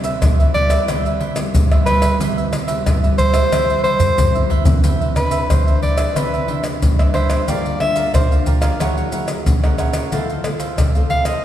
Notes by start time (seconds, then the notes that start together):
Already playing: C3
0.04 B4 C5 E5, pandeiro, maracas
0.22 G2 G3 B3 E4, pandeiro, tamborim, maracas, surdo
0.40 B4 C5 E5, pandeiro, maracas
0.54 G3 B3 E4 B4 C5 D5 E5, pandeiro, surdo
0.70 B4 C5 E5, pandeiro, tamborim, maracas
0.88 C3 G3 B3 E4 B4 C5 E5, pandeiro, tamborim, maracas, surdo
1.05 B4 C5 E5, pandeiro, maracas
1.20 E4 B4 C5 E5, pandeiro
1.36 G3 B3 E4, muted cavaquinho stroke, pandeiro, tamborim, maracas
1.54 G2, pandeiro, maracas, surdo
1.72 B4 C5 E5, pandeiro, tamborim, maracas
1.86 G3 B3 E4 B4 C5 E5, pandeiro, tamborim, maracas
2.02 B4 C5 E5, pandeiro, tamborim, maracas
2.20 C3 G3 B3 E4 B4 C5 E5, pandeiro, maracas, surdo
2.37 B4 C5 E5, pandeiro, maracas
2.52 muted cavaquinho stroke, pandeiro, tamborim, maracas
2.67 G3 B3 E4 B4 C5 E5, pandeiro, maracas
2.86 G2, pandeiro, tamborim, maracas, surdo
3.03 G3 B3 E4 B4 C5 E5, pandeiro, maracas
3.18 E4 B4 C5 E5, pandeiro, maracas, surdo
3.34 G3 E4 B4 C5 E5, pandeiro, tamborim, maracas
3.52 C3 E4 B4 C5 E5, pandeiro, tamborim, maracas, surdo
3.69 B4 C5 E5, pandeiro, maracas
3.84 G3 E4 B4 C5 E5, pandeiro
4.00 muted cavaquinho stroke, surdo, pandeiro, maracas
4.18 G2, pandeiro, maracas, surdo
4.35 G3 B3 E4 B4 C5 E5, pandeiro, maracas, surdo
4.50 E4 B4 C5 E5, pandeiro, surdo
4.65 E3 B3 D4 B4 C5 E5, pandeiro, maracas, surdo
4.84 C3 E4 B4 C5 E5, pandeiro, maracas, surdo
5.01 B4 C5 E5, pandeiro, maracas
5.16 E3 B3 D4 B4, pandeiro, tamborim, maracas
5.31 B4 C5 E5, pandeiro, maracas
5.50 G2 C5, pandeiro, tamborim, maracas, surdo
5.67 E3 B3 D4 B4 C5 E5, pandeiro, maracas
5.82 E4 B4 C5 D5 E5, pandeiro
5.97 B4 C5 E5, pandeiro, tamborim, maracas
6.16 C3 E3 B3 D4 E4 B4 C5 E5, pandeiro, tamborim, maracas, surdo
6.33 B4 C5 E5, pandeiro, maracas
6.48 E3 B3 D4 E4 B4 C5 E5, pandeiro
6.63 muted cavaquinho stroke, pandeiro, tamborim, maracas
6.82 G2, pandeiro, maracas, surdo
6.99 E3 B3 D4 B4 C5 E5, pandeiro, tamborim, maracas
7.14 E4 B4 C5 E5, pandeiro, tamborim
7.29 B4 C5 E5, pandeiro, tamborim, maracas
7.48 G2 F3 A#3 D4 G4 A#4 D5 F5, pandeiro, maracas, surdo
7.65 A#4 D5 F5, pandeiro, maracas
7.80 F3 A#3 D4 E5, muted cavaquinho stroke, pandeiro, tamborim
7.95 A#4 D5 F5, pandeiro, maracas
8.14 D3 C5, pandeiro, tamborim, maracas, surdo
8.31 F3 A#3 D4 A#4 D5 F5, pandeiro, maracas
8.46 G4 A#4 D5 F5, pandeiro, maracas, surdo
8.61 A#4 D5 F5, pandeiro, tamborim, maracas
8.80 F#3 A#3 E4 G#4 A#4 C#5 F#5, pandeiro, tamborim, maracas, surdo
8.97 A#4 C#5 F#5, pandeiro, maracas
9.11 A#3 E4 G#4 A#4 C#5 F#5, pandeiro, maracas
9.28 muted cavaquinho stroke, pandeiro, tamborim, maracas
9.46 C#3, pandeiro, maracas, surdo
9.63 A#3 E4 G#4 A#4 C#5 F#5, pandeiro, tamborim, maracas
9.78 E4 A#4 C#5 F#5, pandeiro, tamborim, maracas
9.93 A#4 C#5 F#5, pandeiro, tamborim, maracas
10.12 F3 B3 E4 A4 C5 F5, pandeiro, maracas, surdo
10.29 A4 C5 F5, pandeiro, maracas
10.44 B3 E4 A4, pandeiro, tamborim, maracas
10.59 A4 C5 F5, pandeiro, maracas
10.78 C3, pandeiro, tamborim, maracas, surdo
10.95 B3 E4 A4 C5 F5, pandeiro, maracas
11.10 E4 A4 C5 F5, pandeiro
11.25 A4 C5 D#5 F5, pandeiro, tamborim, maracas